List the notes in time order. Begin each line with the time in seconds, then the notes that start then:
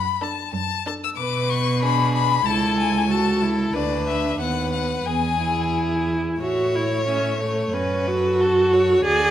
Already playing: F#2 B5
0.22 D4 A4 A5
0.53 F#2 A5
0.86 D4 A4 A5
1.04 E6
1.16 B2 B3 B4 D6
1.50 C#6
1.83 D4 G#4 B5
2.15 B5
2.45 C#2 E4 A4 A5
2.79 G#5
3.10 F#4 A4 A5
3.42 E4
3.73 D2 D4 B4 D5
4.08 E5
4.39 D#2 B3 B4 F#5
4.73 F#5
5.06 E2 B3 G#4 G#5
5.42 E4
6.40 A2 F#4 C#5 E5
6.75 E4 C#5
7.08 C#4 E5
7.40 A3 C#5
7.73 F#2 C#4 F#4 B4
8.07 F#4 A4
8.40 F#4 A4
8.73 A4 C#5
9.04 D2 F#4 G#4 D5